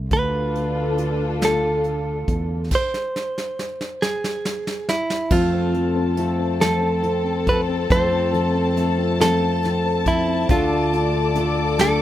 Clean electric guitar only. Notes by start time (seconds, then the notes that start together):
0.13 B4
1.45 A4
2.75 C5
4.02 G#4
4.89 E4
5.32 F4
6.61 A4
7.49 B4
7.92 C5
9.22 A4
10.08 E4
10.51 F4
11.81 A4